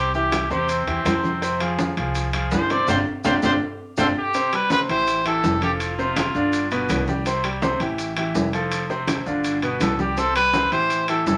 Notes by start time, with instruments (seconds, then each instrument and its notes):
Already playing: upright bass C2, trumpet G4
0.14 grand piano E3 E4 G4, trumpet G4, high conga, maracas
0.32 high conga, high timbale, low timbale, maracas
0.50 upright bass E2, grand piano C3 C4 C5, trumpet G4, high conga, maracas
0.69 trumpet C4, high conga, high timbale, maracas
0.87 upright bass E2, grand piano E3 E4 G4, high conga, high timbale, maracas
1.05 upright bass F2, grand piano C3 C4 C5, high conga, high timbale, low timbale, maracas
1.24 high conga, maracas
1.42 grand piano C3 C4 C5, high conga, high timbale, maracas
1.60 grand piano F3 F4 G#4, high conga, high timbale, maracas
1.79 high conga, low timbale, maracas
1.97 upright bass C2, grand piano F3 F4 G#4, high conga, high timbale, maracas
2.15 high conga, high timbale, maracas
2.33 grand piano F3 F4 G#4, high conga, high timbale, maracas
2.51 upright bass G1, trumpet C5, high conga, low timbale, maracas
2.70 grand piano C3 C4 C5, trumpet D5, high timbale, maracas
2.88 upright bass G1, grand piano D4 F4 G4, trumpet C5, low conga, high timbale, maracas
3.24 upright bass G1, grand piano D4 F4 G4, trumpet C5, low conga, high timbale, maracas
3.42 upright bass G1, grand piano D4 F4 G4, trumpet C5, low conga, high timbale, maracas
3.97 upright bass G1, grand piano D4 F4 G4, trumpet A4 C5, low conga, high timbale, maracas
4.18 trumpet G4
4.34 grand piano C3 C4 C5, high conga, high timbale, maracas
4.52 grand piano G3 G4, trumpet B4, high conga, high timbale, maracas
4.70 grand piano C3 C4 C5, trumpet B4, high conga, low timbale, maracas
4.89 upright bass A1, grand piano E3 E4 G4, trumpet C5, high conga, high timbale, maracas
5.07 high conga, high timbale, maracas
5.25 grand piano E3 E4 G4, trumpet A4, high conga, high timbale, maracas
5.44 upright bass F1, high conga, low timbale, maracas
5.62 grand piano F3 F4 A4, trumpet G4, high conga, high timbale, maracas
5.80 trumpet F4, high conga, high timbale, maracas
5.98 grand piano C3 C4 C5, high conga, maracas
6.16 high conga, high timbale, low timbale, maracas
6.35 upright bass G1, grand piano D3 D4 F4, high conga, maracas
6.53 high conga, high timbale, maracas
6.71 grand piano B2 B3 B4, high conga, high timbale, maracas
6.89 upright bass C2, high conga, high timbale, low timbale, maracas
7.07 grand piano G3 G4, high conga, maracas
7.26 grand piano C3 C4 C5, high timbale, maracas
7.44 grand piano G3 G4, high conga, high timbale, maracas
7.62 grand piano C3 C4 C5, high conga, low timbale, maracas
7.80 upright bass A1, grand piano E3 E4 G4, high conga, high timbale, maracas
7.98 high conga, high timbale, maracas
8.17 grand piano E3 E4 G4, high conga, high timbale, maracas
8.35 upright bass F1, high conga, low timbale, maracas
8.53 grand piano F3 F4 A4, high timbale, maracas
8.72 high conga, high timbale, maracas
8.90 grand piano C3 C4 C5, high conga, maracas
9.08 high conga, high timbale, low timbale, maracas
9.26 upright bass G1, grand piano D3 D4 F4, high conga, maracas
9.44 high conga, high timbale, maracas
9.62 grand piano B2 B3 B4, high conga, high timbale, maracas
9.80 upright bass C2, trumpet A4, high conga, high timbale, low timbale, maracas
9.99 grand piano G3 G4, trumpet G4, high conga, maracas
10.17 grand piano C3 C4 C5, trumpet A4, high conga, high timbale, maracas
10.35 grand piano G3 G4, trumpet B4, high conga, high timbale, maracas
10.53 grand piano C3 C4 C5, high conga, low timbale, maracas
10.72 upright bass A1, grand piano E3 E4 G4, trumpet C5, high conga, high timbale, maracas
10.90 high conga, high timbale, maracas
11.08 grand piano E3 E4 G4, trumpet A4, high conga, high timbale, maracas
11.26 upright bass F1, trumpet A4, high conga, low timbale, maracas